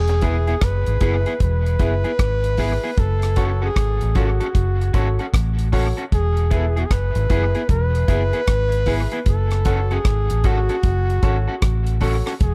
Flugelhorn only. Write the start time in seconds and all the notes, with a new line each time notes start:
Already playing: G#4
0.64 B4
1.42 B4
2.99 A4
3.64 G#4
4.18 F#4
6.14 G#4
6.57 A4
6.69 G#4
6.80 F#4
6.85 G#4
6.92 B4
7.71 B4
9.29 A4
9.93 G#4
10.47 F#4
12.42 G#4